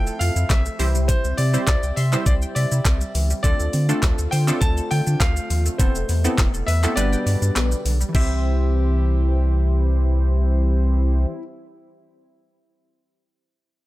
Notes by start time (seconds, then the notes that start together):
Already playing: F1 F3 A3 C4 E4 F4 A4 E5 G5
0.07 A4, shaker
0.19 F2 F4 F5, open hi-hat, shaker
0.36 F2 E4, shaker
0.49 B1 C4 E5, kick, snare, clap, closed hi-hat, shaker
0.66 A3, shaker
0.79 C2 C3 E3 G3 C4 E4 G4 C5, open hi-hat, shaker
0.95 G3, shaker
1.08 E3 C5, kick, closed hi-hat, shaker
1.24 C2 G3, shaker
1.37 C3 C4 D5, open hi-hat, shaker
1.53 G3 C4 E4 G4 C5, shaker
1.67 C2 D5 E5, kick, snare, clap, closed hi-hat, shaker
1.83 C2 G5, shaker
1.96 C3 E5 C6, open hi-hat, shaker
2.12 G3 C4 E4 G4 C5 E6, clap, shaker
2.26 C2 D5 C6, kick, closed hi-hat, shaker
2.42 G5, shaker
2.55 C3 D5 E5, open hi-hat, shaker
2.72 C3 E4, shaker
2.85 C2 C4, kick, snare, clap, closed hi-hat, shaker
3.01 G3, shaker
3.15 C#2 E3, open hi-hat, shaker
3.30 G3, shaker
3.43 D2 D3 F3 A3 C4 D4 F4 A4 D5, kick, closed hi-hat, shaker
3.60 D2 A3, shaker
3.73 D3 C4, open hi-hat, shaker
3.89 A3 C4 D4 F4 A4, shaker
4.03 D2 F4, kick, snare, clap, closed hi-hat, shaker
4.18 D2 A4, shaker
4.31 D3 C5 G5, open hi-hat, shaker
4.48 A3 C4 D4 F4 A4 D5, clap, shaker
4.61 D2 C5 A5, kick, closed hi-hat, shaker
4.77 A4, shaker
4.91 D3 F4 G5, open hi-hat, shaker
5.07 D3 D4, shaker
5.20 D2 C4 F5, kick, snare, clap, closed hi-hat, shaker
5.36 A3, shaker
5.50 D#2 F3, open hi-hat, shaker
5.66 A3, shaker
5.78 E1 B2 C3 E3 A3 B3 C4 E4 A4 C5, kick, closed hi-hat, shaker
5.95 E1 A3, shaker
6.09 E2 B3, open hi-hat, shaker
6.24 A3 B3 C4 E4 A4, shaker
6.38 E1 E4, kick, snare, clap, closed hi-hat, shaker
6.54 E1 A4, shaker
6.67 E2 B4 E5, open hi-hat, shaker
6.83 A3 B3 C4 E4 A4 C5, clap, shaker
6.96 G1 D3 G3 B3 D4 G4 B4 D5 B5, closed hi-hat, shaker
7.12 G5, shaker
7.26 G2 D5, open hi-hat, shaker
7.42 G2 D4, shaker
7.56 A#1 B3, snare, clap, closed hi-hat, shaker
7.71 G3, shaker
7.85 B1 D3, open hi-hat, shaker
8.01 G3, shaker
8.09 E3 G3
8.15 C2 C3 C4 E4 G4 C5 E5, kick, crash
8.21 E4